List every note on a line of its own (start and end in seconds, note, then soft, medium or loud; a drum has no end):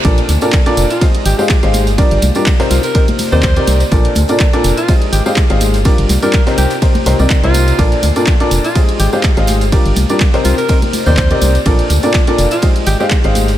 0.05 0.21 A#1 loud
0.05 0.28 A#2 loud
0.05 0.28 D4 medium
0.05 0.28 F4 medium
0.05 0.28 A4 medium
0.05 0.28 A#4 medium
0.05 0.28 D5 loud
0.05 kick loud
0.05 closed hi-hat medium
0.05 ride medium
0.18 closed hi-hat medium
0.29 0.37 D2 loud
0.29 closed hi-hat medium
0.29 open hi-hat loud
0.29 tambourine loud
0.29 high conga medium
0.41 0.56 A#2 medium
0.41 0.56 D4 medium
0.41 0.56 F4 medium
0.41 0.56 A4 medium
0.41 0.56 A#4 medium
0.41 0.56 D5 medium
0.41 closed hi-hat soft
0.41 tambourine medium
0.53 kick loud
0.53 snare loud
0.53 clap loud
0.53 closed hi-hat medium
0.53 ride medium
0.66 0.90 A#2 loud
0.66 0.90 D4 medium
0.66 0.90 F4 medium
0.66 0.90 A4 medium
0.66 0.90 A#4 medium
0.66 0.90 D5 loud
0.66 snare soft
0.66 closed hi-hat medium
0.77 0.86 F1 medium
0.77 closed hi-hat medium
0.77 open hi-hat loud
0.77 tambourine loud
0.90 1.07 F4 medium
0.90 closed hi-hat soft
0.90 tambourine medium
1.01 1.36 G#3 medium
1.01 1.36 D#4 medium
1.01 1.36 G4 medium
1.01 1.36 G#4 medium
1.01 1.36 C5 medium
1.01 1.36 D#5 medium
1.01 kick loud
1.01 closed hi-hat medium
1.01 ride medium
1.01 tambourine soft
1.15 closed hi-hat medium
1.25 1.34 G#1 loud
1.25 1.34 G4 medium
1.25 closed hi-hat medium
1.25 open hi-hat loud
1.25 tambourine loud
1.39 1.53 G#3 medium
1.39 1.53 D#4 medium
1.39 1.46 G4 medium
1.39 1.53 G4 medium
1.39 1.53 G#4 medium
1.39 1.53 C5 medium
1.39 1.53 F5 medium
1.39 tambourine soft
1.49 kick loud
1.49 snare loud
1.49 clap loud
1.49 closed hi-hat medium
1.49 ride medium
1.49 tambourine soft
1.63 1.89 G#1 medium
1.63 1.87 G#3 loud
1.63 1.87 D#4 medium
1.63 1.87 G4 medium
1.63 1.87 G#4 medium
1.63 1.87 C5 medium
1.63 1.87 F5 loud
1.63 closed hi-hat medium
1.74 closed hi-hat medium
1.74 open hi-hat loud
1.74 tambourine loud
1.74 high conga medium
1.87 2.02 G1 medium
1.87 closed hi-hat soft
1.87 tambourine soft
1.98 2.22 G3 loud
1.98 2.22 D4 loud
1.98 2.22 F4 medium
1.98 2.22 G4 medium
1.98 2.22 A#4 medium
1.98 2.22 D5 loud
1.98 kick loud
1.98 closed hi-hat medium
1.98 ride medium
1.98 tambourine soft
2.11 2.18 G1 loud
2.11 closed hi-hat medium
2.22 2.31 C2 loud
2.22 closed hi-hat medium
2.22 open hi-hat loud
2.22 tambourine loud
2.22 high conga medium
2.35 2.50 G3 medium
2.35 2.50 D4 medium
2.35 2.50 F4 medium
2.35 2.50 G4 medium
2.35 2.50 A#4 medium
2.35 2.50 D5 medium
2.35 closed hi-hat soft
2.35 tambourine medium
2.46 kick loud
2.46 snare loud
2.46 clap loud
2.46 closed hi-hat medium
2.46 ride medium
2.46 tambourine soft
2.59 2.83 C3 loud
2.59 2.83 C4 medium
2.59 2.83 D#4 medium
2.59 2.83 G4 medium
2.59 2.83 A#4 medium
2.59 2.83 C5 loud
2.59 snare medium
2.59 open hi-hat medium
2.71 2.79 C2 medium
2.71 2.81 F4 medium
2.71 snare soft
2.71 closed hi-hat medium
2.71 open hi-hat loud
2.71 tambourine medium
2.83 3.05 A#4 medium
2.83 closed hi-hat soft
2.83 tambourine medium
2.95 3.29 C3 medium
2.95 3.29 C4 medium
2.95 3.29 D#4 medium
2.95 3.29 G4 medium
2.95 3.29 A#4 medium
2.95 3.29 C5 medium
2.95 kick loud
2.95 closed hi-hat medium
2.95 ride medium
3.08 closed hi-hat medium
3.08 high conga medium
3.19 open hi-hat medium
3.19 open hi-hat loud
3.19 tambourine loud
3.19 high conga medium
3.32 3.43 D#2 medium
3.32 3.46 C3 medium
3.32 3.46 C4 medium
3.32 3.46 D#4 medium
3.32 3.46 G4 medium
3.32 3.46 A#4 medium
3.32 3.81 C5 loud
3.32 3.46 D5 medium
3.32 tambourine soft
3.43 3.59 D#2 medium
3.43 kick loud
3.43 snare loud
3.43 clap loud
3.43 closed hi-hat medium
3.43 ride medium
3.43 tambourine soft
3.56 3.80 C3 loud
3.56 3.80 C4 medium
3.56 3.80 D#4 medium
3.56 3.80 G4 medium
3.56 3.80 A#4 medium
3.56 3.80 D5 loud
3.56 closed hi-hat medium
3.67 3.84 C2 loud
3.67 closed hi-hat medium
3.67 open hi-hat loud
3.67 tambourine loud
3.67 high conga medium
3.80 closed hi-hat soft
3.80 tambourine medium
3.92 4.08 A#1 loud
3.92 4.16 A#2 loud
3.92 4.16 D4 medium
3.92 4.16 F4 medium
3.92 4.16 A4 medium
3.92 4.16 A#4 medium
3.92 4.16 D5 loud
3.92 kick loud
3.92 closed hi-hat medium
3.92 ride medium
3.92 tambourine soft
4.05 closed hi-hat medium
4.15 4.24 D2 medium
4.15 closed hi-hat medium
4.15 open hi-hat loud
4.15 tambourine medium
4.15 high conga medium
4.28 4.43 A#2 medium
4.28 4.43 D4 medium
4.28 4.43 F4 medium
4.28 4.43 A4 medium
4.28 4.43 A#4 medium
4.28 4.43 D5 medium
4.28 closed hi-hat soft
4.28 tambourine medium
4.39 kick loud
4.39 snare loud
4.39 clap loud
4.39 closed hi-hat medium
4.39 ride medium
4.39 tambourine soft
4.53 4.77 A#2 loud
4.53 4.77 D4 medium
4.53 4.77 F4 medium
4.53 4.77 A4 medium
4.53 4.77 A#4 medium
4.53 4.77 D5 loud
4.53 snare soft
4.53 closed hi-hat soft
4.64 4.73 F1 medium
4.64 closed hi-hat medium
4.64 open hi-hat loud
4.64 tambourine loud
4.77 4.94 F4 loud
4.77 closed hi-hat soft
4.77 tambourine medium
4.88 5.23 G#3 medium
4.88 5.23 D#4 medium
4.88 5.23 G4 medium
4.88 5.23 G#4 medium
4.88 5.23 C5 medium
4.88 5.23 D#5 medium
4.88 kick loud
4.88 closed hi-hat medium
4.88 ride medium
4.88 tambourine soft
5.02 closed hi-hat medium
5.13 5.21 G#1 loud
5.13 5.21 G4 medium
5.13 closed hi-hat medium
5.13 open hi-hat loud
5.13 tambourine loud
5.26 5.40 G#3 medium
5.26 5.40 D#4 medium
5.26 5.33 G4 medium
5.26 5.40 G4 medium
5.26 5.40 G#4 medium
5.26 5.40 C5 medium
5.26 5.40 F5 medium
5.26 tambourine medium
5.36 kick loud
5.36 snare loud
5.36 clap loud
5.36 closed hi-hat medium
5.36 ride medium
5.36 tambourine soft
5.50 5.76 G#1 medium
5.50 5.74 G#3 loud
5.50 5.74 D#4 medium
5.50 5.74 G4 medium
5.50 5.74 G#4 medium
5.50 5.74 C5 medium
5.50 5.74 F5 loud
5.50 closed hi-hat medium
5.60 closed hi-hat medium
5.60 open hi-hat loud
5.60 tambourine loud
5.60 high conga medium
5.74 5.89 G1 medium
5.74 closed hi-hat soft
5.74 tambourine medium
5.85 6.09 G3 loud
5.85 6.09 D4 medium
5.85 6.09 F4 medium
5.85 6.09 G4 loud
5.85 6.09 A#4 medium
5.85 6.09 D5 loud
5.85 kick loud
5.85 closed hi-hat medium
5.85 ride medium
5.85 tambourine soft
5.98 6.05 G1 loud
5.98 closed hi-hat medium
6.09 6.18 C2 medium
6.09 snare loud
6.09 closed hi-hat medium
6.09 open hi-hat loud
6.09 tambourine medium
6.09 high conga medium
6.22 6.37 G3 medium
6.22 6.37 D4 medium
6.22 6.37 F4 medium
6.22 6.37 G4 medium
6.22 6.37 A#4 medium
6.22 6.44 A#4 medium
6.22 6.37 D5 medium
6.22 snare soft
6.22 closed hi-hat soft
6.22 tambourine medium
6.33 kick loud
6.33 clap loud
6.33 closed hi-hat medium
6.33 ride medium
6.33 tambourine soft
6.46 6.71 C3 loud
6.46 6.71 C4 medium
6.46 6.71 D#4 medium
6.46 6.71 G4 medium
6.46 6.70 A#4 medium
6.46 6.71 C5 loud
6.46 snare loud
6.46 closed hi-hat medium
6.46 open hi-hat medium
6.58 6.66 C2 medium
6.58 6.80 G4 medium
6.58 snare soft
6.58 open hi-hat loud
6.58 tambourine loud
6.70 snare soft
6.70 closed hi-hat medium
6.70 closed hi-hat soft
6.70 tambourine medium
6.82 7.04 C3 medium
6.82 7.04 C4 medium
6.82 7.04 D#4 medium
6.82 7.04 G4 medium
6.82 7.04 A#4 medium
6.82 7.04 C5 medium
6.82 kick loud
6.82 snare loud
6.82 closed hi-hat medium
6.82 ride medium
6.82 tambourine soft
6.95 snare soft
6.95 closed hi-hat medium
6.95 high conga medium
7.06 7.15 C2 loud
7.06 7.17 C3 medium
7.06 7.17 C4 medium
7.06 7.17 D#4 medium
7.06 7.17 G4 medium
7.06 7.17 A#4 medium
7.06 7.17 C5 loud
7.06 snare soft
7.06 closed hi-hat medium
7.06 open hi-hat loud
7.06 tambourine loud
7.06 high conga medium
7.19 7.26 C2 medium
7.19 7.40 C3 medium
7.19 7.40 C4 medium
7.19 7.40 D#4 medium
7.19 7.40 G4 medium
7.19 7.40 A#4 medium
7.19 7.40 D5 medium
7.19 closed hi-hat soft
7.19 tambourine medium
7.30 kick loud
7.30 snare loud
7.30 clap loud
7.30 closed hi-hat medium
7.30 ride medium
7.30 tambourine soft
7.44 7.72 C2 loud
7.44 7.76 C3 medium
7.44 7.76 C4 medium
7.44 7.76 D#4 medium
7.44 7.84 F4 loud
7.44 7.76 G4 medium
7.44 7.76 A#4 medium
7.44 7.76 C5 loud
7.44 closed hi-hat medium
7.54 closed hi-hat medium
7.54 open hi-hat loud
7.54 tambourine loud
7.54 high conga medium
7.68 closed hi-hat soft
7.68 tambourine medium
7.79 7.95 A#1 loud
7.79 8.03 A#2 loud
7.79 8.03 D4 medium
7.79 8.03 F4 medium
7.79 8.03 A4 medium
7.79 8.03 A#4 medium
7.79 8.03 D5 loud
7.79 kick loud
7.79 closed hi-hat medium
7.79 ride medium
7.79 tambourine soft
7.92 closed hi-hat soft
8.03 8.11 D2 medium
8.03 closed hi-hat medium
8.03 open hi-hat loud
8.03 tambourine loud
8.03 high conga medium
8.16 8.30 A#2 medium
8.16 8.30 D4 medium
8.16 8.30 F4 medium
8.16 8.30 A4 medium
8.16 8.30 A#4 medium
8.16 8.30 D5 medium
8.16 closed hi-hat soft
8.16 closed hi-hat medium
8.16 tambourine medium
8.26 kick loud
8.26 snare loud
8.26 clap loud
8.26 closed hi-hat medium
8.26 ride medium
8.40 8.64 A#2 loud
8.40 8.64 D4 medium
8.40 8.64 F4 medium
8.40 8.64 A4 medium
8.40 8.64 A#4 medium
8.40 8.64 D5 loud
8.40 snare soft
8.40 closed hi-hat soft
8.51 8.60 F1 medium
8.51 closed hi-hat medium
8.51 open hi-hat loud
8.51 tambourine loud
8.64 8.81 F4 medium
8.64 closed hi-hat soft
8.64 tambourine soft
8.75 9.10 G#3 medium
8.75 9.10 D#4 medium
8.75 9.10 G4 medium
8.75 9.10 G#4 medium
8.75 9.10 C5 medium
8.75 9.10 D#5 medium
8.75 kick loud
8.75 closed hi-hat medium
8.75 ride medium
8.75 tambourine soft
8.89 closed hi-hat medium
9.00 9.08 G#1 loud
9.00 9.08 G4 medium
9.00 closed hi-hat medium
9.00 open hi-hat loud
9.00 tambourine loud
9.13 9.27 G#3 medium
9.13 9.27 D#4 medium
9.13 9.20 G4 medium
9.13 9.27 G4 medium
9.13 9.27 G#4 medium
9.13 9.27 C5 medium
9.13 9.27 F5 medium
9.13 tambourine medium
9.23 kick loud
9.23 snare loud
9.23 clap loud
9.23 closed hi-hat medium
9.23 ride medium
9.23 tambourine soft
9.37 9.63 G#1 medium
9.37 9.61 G#3 medium
9.37 9.61 D#4 medium
9.37 9.61 G4 medium
9.37 9.61 G#4 medium
9.37 9.61 C5 medium
9.37 9.61 F5 loud
9.37 closed hi-hat medium
9.47 closed hi-hat medium
9.47 open hi-hat loud
9.47 tambourine loud
9.47 high conga medium
9.61 9.76 G1 medium
9.61 closed hi-hat soft
9.61 tambourine medium
9.72 9.96 G3 loud
9.72 9.96 D4 medium
9.72 9.96 F4 medium
9.72 9.96 G4 medium
9.72 9.96 A#4 medium
9.72 9.96 D5 loud
9.72 kick loud
9.72 closed hi-hat medium
9.72 ride medium
9.72 tambourine soft
9.86 9.93 G1 loud
9.86 closed hi-hat medium
9.96 10.05 C2 medium
9.96 closed hi-hat medium
9.96 open hi-hat loud
9.96 tambourine medium
9.96 high conga medium
10.09 10.24 G3 medium
10.09 10.24 D4 medium
10.09 10.24 F4 medium
10.09 10.24 G4 medium
10.09 10.24 A#4 medium
10.09 10.24 D5 medium
10.09 closed hi-hat soft
10.09 tambourine medium
10.20 kick loud
10.20 snare loud
10.20 clap loud
10.20 closed hi-hat medium
10.20 ride medium
10.20 tambourine soft
10.34 10.58 C3 medium
10.34 10.58 C4 medium
10.34 10.58 D#4 medium
10.34 10.58 G4 medium
10.34 10.58 A#4 loud
10.34 10.58 C5 loud
10.34 snare medium
10.34 open hi-hat medium
10.45 10.53 C2 medium
10.45 10.55 F4 medium
10.45 snare soft
10.45 closed hi-hat medium
10.45 open hi-hat loud
10.45 tambourine medium
10.58 10.79 A#4 loud
10.58 closed hi-hat soft
10.58 tambourine soft
10.68 11.03 C3 medium
10.68 11.03 C4 medium
10.68 11.03 D#4 medium
10.68 11.03 G4 medium
10.68 11.03 A#4 medium
10.68 11.03 C5 medium
10.68 kick loud
10.68 closed hi-hat loud
10.68 closed hi-hat medium
10.68 ride medium
10.68 tambourine soft
10.82 closed hi-hat medium
10.82 high conga medium
10.93 open hi-hat medium
10.93 open hi-hat loud
10.93 tambourine loud
10.93 high conga medium
11.06 11.17 D#2 medium
11.06 11.21 C3 medium
11.06 11.21 C4 medium
11.06 11.21 D#4 medium
11.06 11.21 G4 medium
11.06 11.21 A#4 medium
11.06 11.55 C5 loud
11.06 11.21 D5 medium
11.06 tambourine soft
11.17 11.34 D#2 loud
11.17 kick loud
11.17 snare loud
11.17 clap loud
11.17 closed hi-hat medium
11.17 ride medium
11.17 tambourine soft
11.31 11.54 C3 medium
11.31 11.55 C4 medium
11.31 11.54 D#4 medium
11.31 11.54 G4 medium
11.31 11.54 A#4 medium
11.31 11.54 D5 loud
11.31 closed hi-hat medium
11.41 11.58 C2 loud
11.41 closed hi-hat medium
11.41 open hi-hat loud
11.41 tambourine loud
11.41 high conga medium
11.55 closed hi-hat soft
11.55 tambourine soft
11.65 11.82 A#1 loud
11.65 11.90 A#2 loud
11.65 11.90 D4 medium
11.65 11.90 F4 medium
11.65 11.90 A4 medium
11.65 11.90 A#4 medium
11.65 11.90 D5 loud
11.65 kick loud
11.65 closed hi-hat medium
11.65 ride medium
11.65 tambourine soft
11.79 closed hi-hat medium
11.90 11.98 D2 loud
11.90 closed hi-hat medium
11.90 open hi-hat loud
11.90 tambourine loud
11.90 high conga medium
12.03 12.17 A#2 medium
12.03 12.17 D4 medium
12.03 12.17 F4 medium
12.03 12.17 A4 medium
12.03 12.17 A#4 medium
12.03 12.17 D5 medium
12.03 closed hi-hat soft
12.03 tambourine medium
12.14 kick loud
12.14 snare loud
12.14 clap loud
12.14 closed hi-hat medium
12.14 closed hi-hat loud
12.14 ride medium
12.14 tambourine soft
12.27 12.51 A#2 loud
12.27 12.51 D4 medium
12.27 12.51 F4 loud
12.27 12.51 A4 medium
12.27 12.51 A#4 medium
12.27 12.51 D5 loud
12.27 snare soft
12.27 closed hi-hat medium
12.38 12.47 F1 medium
12.38 closed hi-hat medium
12.38 open hi-hat loud
12.38 tambourine medium
12.51 12.68 F4 medium
12.51 closed hi-hat soft
12.51 tambourine medium
12.62 12.97 G#3 medium
12.62 12.97 D#4 medium
12.62 12.97 G4 medium
12.62 12.97 G#4 medium
12.62 12.97 C5 medium
12.62 12.97 D#5 medium
12.62 kick loud
12.62 closed hi-hat medium
12.62 ride medium
12.62 tambourine soft
12.76 closed hi-hat medium
12.86 12.95 G#1 loud
12.86 12.95 G4 medium
12.86 closed hi-hat medium
12.86 open hi-hat loud
12.86 tambourine medium
13.00 13.14 G#3 medium
13.00 13.14 D#4 medium
13.00 13.07 G4 medium
13.00 13.14 G4 medium
13.00 13.14 G#4 medium
13.00 13.14 C5 medium
13.00 13.14 F5 medium
13.00 tambourine soft
13.11 kick loud
13.11 snare loud
13.11 clap loud
13.11 closed hi-hat medium
13.11 ride medium
13.11 tambourine soft
13.24 13.50 G#1 medium
13.24 13.48 G#3 loud
13.24 13.48 D#4 medium
13.24 13.48 G4 medium
13.24 13.48 G#4 medium
13.24 13.48 C5 medium
13.24 13.48 F5 loud
13.24 closed hi-hat medium
13.35 closed hi-hat medium
13.35 open hi-hat loud
13.35 tambourine medium
13.35 high conga medium
13.48 13.58 G1 medium
13.48 closed hi-hat soft
13.48 tambourine soft